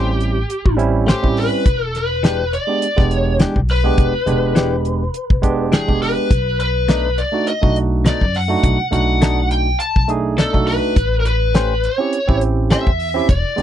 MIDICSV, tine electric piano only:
0, 0, Header, 1, 2, 480
1, 0, Start_track
1, 0, Tempo, 581395
1, 1369, Time_signature, 4, 2, 24, 8
1, 11248, End_track
2, 0, Start_track
2, 0, Title_t, "Tine electric piano"
2, 0, Program_c, 0, 4
2, 0, Note_on_c, 0, 55, 67
2, 0, Note_on_c, 0, 60, 66
2, 0, Note_on_c, 0, 61, 62
2, 0, Note_on_c, 0, 64, 72
2, 309, Note_off_c, 0, 55, 0
2, 312, Note_off_c, 0, 60, 0
2, 314, Note_off_c, 0, 61, 0
2, 317, Note_off_c, 0, 64, 0
2, 634, Note_on_c, 0, 55, 86
2, 640, Note_on_c, 0, 60, 71
2, 643, Note_on_c, 0, 61, 73
2, 647, Note_on_c, 0, 64, 89
2, 873, Note_off_c, 0, 55, 0
2, 876, Note_off_c, 0, 60, 0
2, 877, Note_off_c, 0, 61, 0
2, 879, Note_off_c, 0, 64, 0
2, 1010, Note_on_c, 0, 55, 63
2, 1013, Note_on_c, 0, 60, 61
2, 1020, Note_on_c, 0, 61, 62
2, 1023, Note_on_c, 0, 64, 66
2, 1363, Note_off_c, 0, 55, 0
2, 1365, Note_off_c, 0, 60, 0
2, 1368, Note_off_c, 0, 61, 0
2, 1370, Note_off_c, 0, 64, 0
2, 2205, Note_on_c, 0, 56, 58
2, 2213, Note_on_c, 0, 59, 48
2, 2215, Note_on_c, 0, 62, 53
2, 2222, Note_on_c, 0, 67, 58
2, 2357, Note_off_c, 0, 56, 0
2, 2361, Note_off_c, 0, 59, 0
2, 2363, Note_off_c, 0, 62, 0
2, 2366, Note_off_c, 0, 67, 0
2, 2446, Note_on_c, 0, 56, 66
2, 2450, Note_on_c, 0, 59, 63
2, 2458, Note_on_c, 0, 62, 59
2, 2461, Note_on_c, 0, 67, 71
2, 2912, Note_off_c, 0, 56, 0
2, 2914, Note_off_c, 0, 59, 0
2, 2918, Note_off_c, 0, 62, 0
2, 2919, Note_off_c, 0, 67, 0
2, 3169, Note_on_c, 0, 56, 73
2, 3174, Note_on_c, 0, 59, 73
2, 3181, Note_on_c, 0, 62, 64
2, 3184, Note_on_c, 0, 67, 83
2, 3404, Note_off_c, 0, 56, 0
2, 3407, Note_off_c, 0, 59, 0
2, 3410, Note_off_c, 0, 62, 0
2, 3411, Note_off_c, 0, 67, 0
2, 3519, Note_on_c, 0, 56, 70
2, 3523, Note_on_c, 0, 59, 58
2, 3530, Note_on_c, 0, 62, 63
2, 3534, Note_on_c, 0, 67, 69
2, 4148, Note_off_c, 0, 56, 0
2, 4150, Note_off_c, 0, 59, 0
2, 4154, Note_off_c, 0, 62, 0
2, 4156, Note_off_c, 0, 67, 0
2, 4474, Note_on_c, 0, 56, 80
2, 4479, Note_on_c, 0, 59, 71
2, 4486, Note_on_c, 0, 62, 83
2, 4490, Note_on_c, 0, 67, 87
2, 4712, Note_off_c, 0, 56, 0
2, 4715, Note_off_c, 0, 59, 0
2, 4718, Note_off_c, 0, 62, 0
2, 4720, Note_off_c, 0, 67, 0
2, 4849, Note_on_c, 0, 56, 60
2, 4856, Note_on_c, 0, 59, 54
2, 4862, Note_on_c, 0, 62, 58
2, 4866, Note_on_c, 0, 67, 68
2, 5202, Note_off_c, 0, 56, 0
2, 5205, Note_off_c, 0, 59, 0
2, 5209, Note_off_c, 0, 62, 0
2, 5210, Note_off_c, 0, 67, 0
2, 6043, Note_on_c, 0, 57, 61
2, 6050, Note_on_c, 0, 62, 52
2, 6056, Note_on_c, 0, 63, 50
2, 6060, Note_on_c, 0, 66, 60
2, 6196, Note_off_c, 0, 57, 0
2, 6199, Note_off_c, 0, 62, 0
2, 6202, Note_off_c, 0, 63, 0
2, 6204, Note_off_c, 0, 66, 0
2, 6287, Note_on_c, 0, 57, 63
2, 6291, Note_on_c, 0, 62, 59
2, 6297, Note_on_c, 0, 63, 58
2, 6300, Note_on_c, 0, 66, 72
2, 6752, Note_off_c, 0, 57, 0
2, 6754, Note_off_c, 0, 62, 0
2, 6757, Note_off_c, 0, 63, 0
2, 6759, Note_off_c, 0, 66, 0
2, 7004, Note_on_c, 0, 57, 70
2, 7011, Note_on_c, 0, 62, 69
2, 7016, Note_on_c, 0, 63, 64
2, 7019, Note_on_c, 0, 66, 78
2, 7241, Note_off_c, 0, 57, 0
2, 7245, Note_off_c, 0, 62, 0
2, 7247, Note_off_c, 0, 63, 0
2, 7249, Note_off_c, 0, 66, 0
2, 7355, Note_on_c, 0, 57, 67
2, 7363, Note_on_c, 0, 62, 66
2, 7369, Note_on_c, 0, 63, 62
2, 7373, Note_on_c, 0, 66, 72
2, 7987, Note_off_c, 0, 57, 0
2, 7991, Note_off_c, 0, 62, 0
2, 7993, Note_off_c, 0, 63, 0
2, 7996, Note_off_c, 0, 66, 0
2, 8320, Note_on_c, 0, 57, 73
2, 8327, Note_on_c, 0, 62, 63
2, 8333, Note_on_c, 0, 63, 65
2, 8338, Note_on_c, 0, 68, 82
2, 8556, Note_off_c, 0, 57, 0
2, 8559, Note_off_c, 0, 62, 0
2, 8562, Note_off_c, 0, 63, 0
2, 8564, Note_off_c, 0, 68, 0
2, 8692, Note_on_c, 0, 57, 65
2, 8697, Note_on_c, 0, 62, 62
2, 8701, Note_on_c, 0, 63, 61
2, 8707, Note_on_c, 0, 66, 65
2, 9044, Note_off_c, 0, 57, 0
2, 9047, Note_off_c, 0, 62, 0
2, 9048, Note_off_c, 0, 63, 0
2, 9051, Note_off_c, 0, 66, 0
2, 9891, Note_on_c, 0, 60, 59
2, 9897, Note_on_c, 0, 61, 55
2, 9904, Note_on_c, 0, 64, 49
2, 9910, Note_on_c, 0, 67, 63
2, 10041, Note_off_c, 0, 60, 0
2, 10044, Note_off_c, 0, 61, 0
2, 10047, Note_off_c, 0, 64, 0
2, 10050, Note_off_c, 0, 67, 0
2, 10134, Note_on_c, 0, 60, 69
2, 10141, Note_on_c, 0, 61, 57
2, 10145, Note_on_c, 0, 64, 68
2, 10151, Note_on_c, 0, 67, 71
2, 10597, Note_off_c, 0, 60, 0
2, 10600, Note_off_c, 0, 61, 0
2, 10602, Note_off_c, 0, 64, 0
2, 10605, Note_off_c, 0, 67, 0
2, 10849, Note_on_c, 0, 60, 76
2, 10855, Note_on_c, 0, 61, 64
2, 10863, Note_on_c, 0, 64, 69
2, 10868, Note_on_c, 0, 67, 78
2, 10963, Note_off_c, 0, 60, 0
2, 10966, Note_off_c, 0, 61, 0
2, 10970, Note_off_c, 0, 64, 0
2, 10973, Note_off_c, 0, 67, 0
2, 11196, Note_on_c, 0, 56, 68
2, 11202, Note_on_c, 0, 59, 61
2, 11210, Note_on_c, 0, 62, 61
2, 11214, Note_on_c, 0, 67, 68
2, 11248, Note_off_c, 0, 56, 0
2, 11248, Note_off_c, 0, 59, 0
2, 11248, Note_off_c, 0, 62, 0
2, 11248, Note_off_c, 0, 67, 0
2, 11248, End_track
0, 0, End_of_file